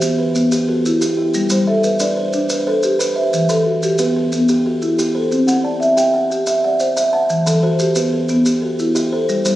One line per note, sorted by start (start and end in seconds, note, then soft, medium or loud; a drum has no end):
0.00 0.35 B3 medium
0.00 0.19 F#4 medium
0.00 0.18 G4 medium
0.00 0.51 G4 medium
0.00 0.19 C5 medium
0.00 maracas medium
0.18 0.68 B4 medium
0.35 0.68 B3 medium
0.35 maracas medium
0.52 0.85 G4 medium
0.52 maracas medium
0.68 1.18 F#4 medium
0.68 1.18 A4 medium
0.85 1.17 E4 medium
0.85 maracas medium
1.01 1.16 G4 medium
1.01 maracas medium
1.17 1.51 E4 medium
1.17 1.67 G4 medium
1.34 1.68 G3 medium
1.34 maracas medium
1.50 1.84 G3 medium
1.50 2.01 C5 medium
1.50 maracas medium
1.67 2.17 A4 medium
1.67 2.17 E5 medium
1.84 2.17 B4 medium
1.84 maracas medium
2.00 2.33 D4 medium
2.00 2.49 B4 medium
2.00 2.50 D5 medium
2.00 maracas medium
2.17 2.66 C5 medium
2.33 2.67 D4 medium
2.33 maracas medium
2.50 2.83 B4 medium
2.50 maracas medium
2.67 3.16 A4 medium
2.67 3.16 C5 medium
2.83 3.17 G4 medium
2.83 maracas medium
2.99 3.49 G4 medium
2.99 3.33 B4 medium
2.99 maracas medium
3.16 3.50 C5 medium
3.16 3.66 E5 medium
3.33 3.66 E3 medium
3.33 maracas medium
3.49 3.82 E3 medium
3.49 3.99 A4 medium
3.49 maracas medium
3.66 4.16 F#4 medium
3.83 4.16 G4 medium
3.83 maracas medium
3.98 4.32 B3 medium
3.98 4.48 G4 medium
3.98 4.49 B4 medium
3.98 maracas medium
4.16 4.65 A4 medium
4.32 4.65 B3 medium
4.32 maracas medium
4.48 4.82 G4 medium
4.48 maracas medium
4.66 5.15 F#4 medium
4.66 5.15 A4 medium
4.82 5.32 E4 medium
4.82 maracas soft
4.99 5.48 E4 medium
4.99 5.32 G4 medium
4.99 maracas medium
5.15 5.48 A4 medium
5.15 5.64 C5 medium
5.32 5.65 C4 medium
5.32 maracas soft
5.47 5.81 C4 medium
5.47 5.97 F#5 medium
5.47 maracas medium
5.64 6.14 D5 medium
5.64 6.14 A5 medium
5.80 6.14 E5 medium
5.80 maracas soft
5.97 6.30 G4 medium
5.97 6.46 E5 medium
5.97 6.47 G5 medium
5.97 maracas medium
6.14 6.63 F#5 medium
6.30 6.64 G4 medium
6.30 maracas medium
6.47 6.80 E5 medium
6.47 maracas medium
6.64 7.14 D5 medium
6.64 7.14 F#5 medium
6.80 7.13 C5 medium
6.80 maracas medium
6.97 7.30 E5 medium
6.97 maracas medium
7.13 7.47 F#5 medium
7.13 7.63 A5 medium
7.30 7.63 E3 medium
7.30 maracas medium
7.46 7.80 E3 medium
7.46 7.96 A4 medium
7.46 maracas medium
7.63 8.13 F#4 medium
7.63 8.13 C5 medium
7.79 8.13 G4 medium
7.79 maracas medium
7.95 8.29 B3 medium
7.95 8.44 G4 medium
7.95 8.46 B4 medium
7.95 maracas medium
8.13 8.61 A4 medium
8.29 8.63 B3 medium
8.29 maracas medium
8.46 8.79 G4 medium
8.46 maracas medium
8.62 9.13 F#4 medium
8.62 9.12 A4 medium
8.79 9.29 E4 medium
8.79 maracas medium
8.95 9.45 E4 medium
8.95 9.29 G4 medium
8.95 maracas medium
9.12 9.46 A4 medium
9.12 9.56 C5 medium
9.29 9.56 G3 medium
9.29 maracas medium
9.45 9.56 G3 medium
9.45 9.56 C5 medium
9.45 maracas medium